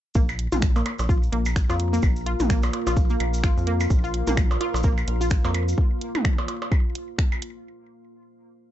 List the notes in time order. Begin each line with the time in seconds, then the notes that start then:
0.15 A#1 A#3, kick, maracas
0.29 percussion blips, maracas
0.39 closed hi-hat
0.45 F4
0.52 A#1 F4 A#5, closed hi-hat, mid tom, maracas
0.62 finger snap, kick, maracas
0.76 A#3 F5, percussion blips, maracas
0.86 closed hi-hat, percussion blips
0.99 A#1, percussion blips, maracas
1.09 F4, kick, maracas
1.23 maracas
1.32 A#1 A#3, closed hi-hat
1.45 percussion blips, maracas
1.56 finger snap, kick, maracas
1.70 F2 F4, percussion blips, maracas
1.80 closed hi-hat
1.93 A#3, maracas
2.02 A#1, kick, percussion blips, maracas
2.16 maracas
2.26 F4, closed hi-hat
2.40 A#1, closed hi-hat, mid tom, maracas
2.50 A#3, finger snap, kick, maracas
2.63 percussion blips, maracas
2.73 closed hi-hat, percussion blips
2.87 A#1 F4 C6, percussion blips, maracas
2.97 kick, maracas
3.10 A#3, maracas
3.20 A#1, closed hi-hat, percussion blips
3.34 maracas
3.43 F4, finger snap, kick, maracas
3.57 F2, maracas
3.67 A#3, closed hi-hat
3.80 percussion blips, maracas
3.90 A#1 A#4, kick, maracas
4.04 F4, maracas
4.14 closed hi-hat
4.27 A#1 A#3, closed hi-hat, mid tom, maracas
4.37 finger snap, kick, percussion blips, maracas
4.51 percussion blips, maracas
4.61 F4, closed hi-hat, percussion blips
4.74 A#1, percussion blips, maracas
4.83 A#3, kick, maracas
4.98 percussion blips, maracas
5.07 A#1, closed hi-hat
5.21 F4, maracas
5.30 finger snap, kick, maracas
5.44 F2 A#3, percussion blips, maracas
5.54 closed hi-hat, percussion blips
5.68 maracas
5.78 kick
6.01 closed hi-hat
6.15 closed hi-hat, mid tom, percussion blips
6.25 finger snap, kick
6.38 percussion blips
6.48 closed hi-hat, percussion blips
6.62 percussion blips
6.72 kick, percussion blips
6.95 closed hi-hat
7.18 finger snap, kick
7.32 percussion blips
7.42 closed hi-hat